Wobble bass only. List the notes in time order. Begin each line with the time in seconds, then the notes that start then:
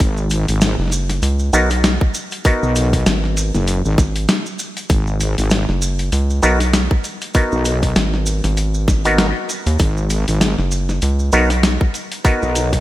0.00 G#1
0.48 G#1
2.62 B1
3.54 F#1
3.85 G#1
4.90 G#1
5.38 G#1
7.52 B1
9.80 G#1
10.28 G#1
12.42 B1